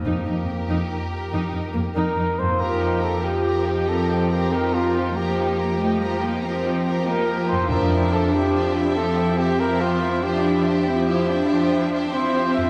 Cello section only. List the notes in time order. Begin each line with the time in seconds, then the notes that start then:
0.05 F2
0.26 F2
0.47 F2
0.69 F2
1.33 F2
1.53 F2
1.75 F2
1.96 F2
2.17 F2
2.39 F2
3.88 C4
5.16 A#3
5.80 A3
6.01 G3
6.21 A#3
6.43 C4
7.07 A#3
7.70 D4
8.97 C4
10.23 D4
10.87 C4
11.07 E4
11.29 D4
12.13 C4